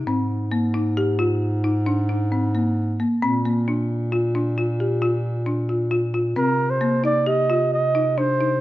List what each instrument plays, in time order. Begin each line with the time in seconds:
0.06 bass clarinet G#2, marimba C4
0.52 marimba A#3
0.74 marimba D#4
0.97 marimba G4
1.19 marimba F4
1.64 marimba D#4
1.86 marimba D4
2.09 marimba D#4
2.32 marimba C4
2.55 marimba A#3
3.00 marimba A#3
3.21 bass clarinet A#2, marimba C4
3.45 marimba A#3
3.68 marimba D4
4.12 marimba F4
4.35 marimba D4
4.58 marimba F4
4.80 marimba G4
5.02 marimba F4
5.46 marimba D4
5.69 marimba F4
5.91 marimba F4
6.14 marimba F4
6.36 bass clarinet C3, marimba C4, flugelhorn A#4
6.70 flugelhorn C5
6.81 marimba A#3
7.04 marimba D#4, flugelhorn D5
7.26 marimba G4, flugelhorn D#5
7.50 marimba F4
7.74 flugelhorn D#5
7.95 marimba D#4
8.18 marimba D4, flugelhorn C5
8.41 marimba D#4